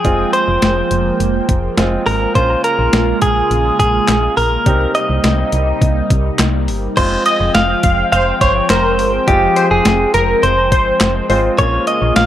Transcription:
0.00 2.31 F3 medium
0.00 2.31 G#3 medium
0.00 0.33 G#4 loud
0.00 2.31 G5 medium
0.05 0.25 F1 loud
0.05 1.74 G#3 medium
0.05 2.33 A#3 medium
0.05 1.74 C4 medium
0.05 1.74 F4 medium
0.05 kick loud
0.05 closed hi-hat medium
0.33 2.02 C5 loud
0.33 closed hi-hat medium
0.48 0.58 F1 loud
0.62 0.83 F1 loud
0.62 snare loud
0.62 closed hi-hat medium
0.91 1.11 F1 loud
0.91 closed hi-hat medium
1.20 1.40 F1 loud
1.20 closed hi-hat medium
1.49 1.69 F1 loud
1.49 kick medium
1.49 closed hi-hat medium
1.77 1.98 F1 loud
1.77 2.35 G#3 medium
1.77 2.35 C4 medium
1.77 2.34 F4 medium
1.77 snare loud
1.77 closed hi-hat medium
2.06 2.27 G#1 loud
2.06 2.35 A#4 medium
2.06 open hi-hat medium
2.35 2.56 A#1 loud
2.35 4.64 C#3 medium
2.35 4.64 G#3 medium
2.35 6.93 A#3 medium
2.35 4.62 A#3 medium
2.35 4.62 C#4 medium
2.35 4.64 F4 medium
2.35 4.62 F4 medium
2.35 2.62 C5 loud
2.35 kick loud
2.35 closed hi-hat medium
2.64 3.21 A#4 loud
2.64 closed hi-hat medium
2.79 2.89 A#1 medium
2.93 3.13 A#1 loud
2.93 snare loud
2.93 closed hi-hat medium
3.22 3.42 A#1 loud
3.22 3.78 G#4 loud
3.22 kick medium
3.22 closed hi-hat medium
3.51 3.71 A#1 loud
3.51 closed hi-hat medium
3.80 4.00 A#1 loud
3.80 4.37 G#4 loud
3.80 kick medium
3.80 closed hi-hat medium
4.08 4.29 A#1 loud
4.08 snare loud
4.08 clap loud
4.08 closed hi-hat medium
4.37 4.58 A#1 medium
4.37 4.91 A#4 loud
4.37 open hi-hat medium
4.66 4.86 C2 loud
4.66 6.95 C3 medium
4.66 6.95 G3 medium
4.66 6.93 C4 medium
4.66 6.95 D#4 medium
4.66 6.93 D#4 medium
4.66 6.93 G4 medium
4.66 kick loud
4.66 closed hi-hat medium
4.95 6.64 D#5 loud
4.95 closed hi-hat medium
5.10 5.20 C2 medium
5.24 5.44 C2 loud
5.24 snare loud
5.24 closed hi-hat medium
5.52 5.73 C2 loud
5.52 closed hi-hat medium
5.82 6.02 C2 loud
5.82 kick medium
5.82 closed hi-hat medium
6.10 6.31 C2 loud
6.10 kick medium
6.10 closed hi-hat medium
6.39 6.70 C2 loud
6.39 snare loud
6.39 clap loud
6.39 closed hi-hat medium
6.68 6.88 G1 medium
6.68 open hi-hat medium
6.97 7.17 F1 loud
6.97 11.54 F3 medium
6.97 12.26 G#3 medium
6.97 9.24 G#3 medium
6.97 11.54 C4 medium
6.97 9.24 C4 medium
6.97 9.24 F4 medium
6.97 7.25 C5 loud
6.97 11.55 G5 medium
6.97 kick loud
6.97 closed hi-hat medium
6.97 crash loud
7.26 7.37 D#5 medium
7.26 7.54 D#5 loud
7.26 closed hi-hat medium
7.40 7.50 F1 medium
7.55 7.75 F1 loud
7.55 8.11 F5 loud
7.55 snare loud
7.55 closed hi-hat medium
7.83 8.04 F1 loud
7.83 8.06 F5 medium
7.83 kick loud
7.83 closed hi-hat medium
8.12 8.33 F1 loud
8.12 8.35 C5 medium
8.12 8.39 F5 loud
8.12 closed hi-hat medium
8.41 8.61 G1 medium
8.41 8.53 C5 medium
8.41 8.70 C#5 medium
8.41 kick medium
8.41 closed hi-hat medium
8.70 9.00 F1 loud
8.70 9.11 A#4 medium
8.70 9.29 C5 loud
8.70 snare loud
8.70 clap loud
8.70 closed hi-hat medium
8.99 9.19 G1 medium
8.99 open hi-hat medium
9.28 9.48 F1 loud
9.28 11.26 G#3 medium
9.28 11.26 C4 medium
9.28 11.26 F4 medium
9.28 9.68 G4 medium
9.28 kick loud
9.28 closed hi-hat medium
9.56 9.68 C5 medium
9.56 closed hi-hat medium
9.71 9.81 F1 loud
9.71 10.14 G#4 medium
9.85 10.06 F1 loud
9.85 snare loud
9.85 closed hi-hat medium
10.14 10.34 F1 loud
10.14 10.44 A#4 medium
10.14 10.37 A#4 medium
10.14 closed hi-hat medium
10.43 10.73 F1 loud
10.43 11.26 C5 medium
10.43 closed hi-hat medium
10.72 10.92 G1 medium
10.72 10.95 C5 medium
10.72 kick medium
10.72 closed hi-hat medium
11.01 11.21 F1 loud
11.01 snare loud
11.01 clap loud
11.01 closed hi-hat medium
11.30 11.50 G#1 medium
11.30 11.59 G#3 medium
11.30 11.59 C4 medium
11.30 11.57 F4 medium
11.30 11.41 C5 medium
11.30 open hi-hat medium
11.58 11.79 A#1 loud
11.58 12.26 C#3 medium
11.58 12.26 A#3 medium
11.58 12.26 C#4 medium
11.58 12.26 F4 medium
11.58 11.87 C#5 loud
11.58 kick loud
11.58 closed hi-hat medium
11.87 12.16 D#5 loud
11.87 closed hi-hat medium
12.02 12.12 A#1 loud
12.16 12.26 A#1 loud
12.16 12.26 F5 loud
12.16 snare loud
12.16 closed hi-hat medium

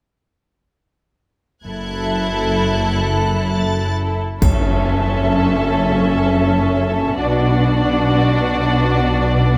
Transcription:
1.65 4.18 F#1 soft
1.65 4.18 F#2 soft
1.65 4.19 E4 soft
1.65 4.19 A4 soft
1.65 3.92 F#6 soft
1.65 3.00 G#6 soft
3.49 3.92 A6 soft
4.42 7.15 F#1 soft
4.42 7.15 F#2 soft
4.42 7.15 C#4 soft
4.42 7.15 A4 soft
4.42 7.15 E5 soft
4.42 taiko soft
4.42 impact soft
4.42 triangle soft
7.18 9.58 B1 soft
7.18 9.58 B2 soft
7.18 9.58 D4 soft
7.18 9.58 F#4 soft
7.18 9.58 D5 soft

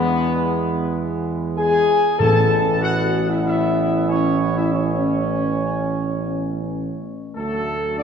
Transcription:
0.00 1.89 E2 medium
0.00 2.03 E3 medium
0.00 2.03 G#3 loud
0.00 1.23 B3 loud
0.00 1.24 B4 loud
1.58 2.16 G#4 loud
1.58 2.16 G#5 loud
2.19 6.99 A1 medium
2.19 3.10 A2 loud
2.19 6.99 E3 medium
2.19 6.99 B3 medium
2.19 2.78 A4 loud
2.19 2.79 A5 loud
2.81 3.26 F#4 loud
2.81 3.27 F#5 loud
3.29 3.43 E4 medium
3.29 3.37 E5 medium
3.44 4.05 E4 loud
3.44 4.05 E5 medium
4.08 4.54 C#4 loud
4.08 4.54 C#5 medium
4.56 4.73 E4 medium
4.56 4.72 E5 medium
4.73 7.02 C#4 loud
4.73 6.99 C#5 medium
7.35 8.03 D2 medium
7.35 7.94 F#3 medium
7.35 7.94 A3 medium
7.35 7.95 A4 loud
7.97 8.03 F#3 medium
7.97 8.03 A3 medium
7.97 8.03 D4 medium
7.97 8.03 D5 loud

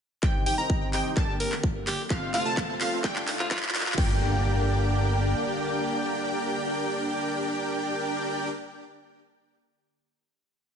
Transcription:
0.23 0.44 C2 medium
0.23 1.16 D#3 medium
0.23 1.16 C4 medium
0.23 0.44 D#4 medium
0.23 2.08 G4 medium
0.23 0.44 G4 medium
0.23 0.44 C5 medium
0.23 0.44 D#5 medium
0.23 0.43 G5 medium
0.23 0.44 G5 medium
0.23 kick loud
0.23 clap soft
0.23 riser medium
0.46 0.56 C2 medium
0.46 0.55 D#4 medium
0.46 0.55 G4 medium
0.46 0.55 C5 medium
0.46 0.55 D#5 medium
0.46 0.55 G5 loud
0.46 open hi-hat loud
0.58 0.91 C2 loud
0.58 0.87 D#4 medium
0.58 0.87 G4 medium
0.58 0.87 C5 medium
0.58 0.87 D#5 medium
0.58 0.87 A#5 medium
0.58 0.87 A#5 loud
0.70 kick loud
0.93 1.14 C2 medium
0.93 1.11 D#4 medium
0.93 1.11 G4 medium
0.93 1.11 C5 medium
0.93 1.11 D#5 medium
0.93 1.11 G5 medium
0.93 clap medium
0.93 open hi-hat medium
1.17 1.32 G1 medium
1.17 2.09 D3 medium
1.17 2.09 A#3 medium
1.17 1.35 D4 medium
1.17 1.35 G4 medium
1.17 1.35 A#4 medium
1.17 1.35 D5 medium
1.17 1.35 A5 medium
1.17 kick loud
1.17 clap medium
1.40 1.56 A#4 medium
1.40 open hi-hat loud
1.52 clap medium
1.63 kick loud
1.87 2.02 G4 medium
1.87 clap medium
1.87 open hi-hat medium
2.10 2.31 F1 medium
2.10 3.03 C3 medium
2.10 3.96 A3 medium
2.10 2.31 C4 medium
2.10 3.96 F4 medium
2.10 2.31 F4 medium
2.10 2.31 A4 medium
2.10 2.31 C5 medium
2.10 2.31 F5 medium
2.10 kick loud
2.10 clap medium
2.34 2.43 F1 loud
2.34 2.43 C4 medium
2.34 2.49 F4 medium
2.34 2.43 F4 medium
2.34 2.43 A4 medium
2.34 2.43 C5 medium
2.34 2.43 F5 loud
2.34 clap medium
2.34 open hi-hat loud
2.45 2.78 F2 loud
2.45 2.74 C4 medium
2.45 2.74 F4 medium
2.45 2.74 A4 medium
2.45 2.74 C5 medium
2.45 2.74 A5 loud
2.45 2.74 A5 medium
2.57 kick loud
2.57 clap medium
2.81 3.02 F2 medium
2.81 2.99 C4 medium
2.81 2.99 F4 medium
2.81 2.99 A4 medium
2.81 2.99 C5 medium
2.81 2.99 F5 medium
2.81 clap medium
2.81 open hi-hat medium
3.04 3.20 D2 medium
3.04 3.96 D3 medium
3.04 3.22 D4 medium
3.04 3.22 D5 medium
3.04 3.22 G5 loud
3.04 3.22 G5 medium
3.04 kick loud
3.04 clap medium
3.16 clap medium
3.28 clap medium
3.28 open hi-hat loud
3.39 3.47 F4 medium
3.39 clap medium
3.51 3.58 F4 medium
3.51 kick loud
3.51 clap loud
3.57 clap medium
3.63 clap medium
3.69 clap medium
3.75 clap loud
3.75 open hi-hat loud
3.80 clap loud
3.86 clap medium
3.92 clap medium
3.98 5.34 G1 medium
3.98 8.49 D3 medium
3.98 8.49 A#3 medium
3.98 8.49 D4 medium
3.98 8.49 G4 loud
3.98 8.49 G4 medium
3.98 8.49 A#4 medium
3.98 8.49 D5 medium
3.98 8.49 G5 loud
3.98 kick loud
3.98 crash medium
3.98 impact medium

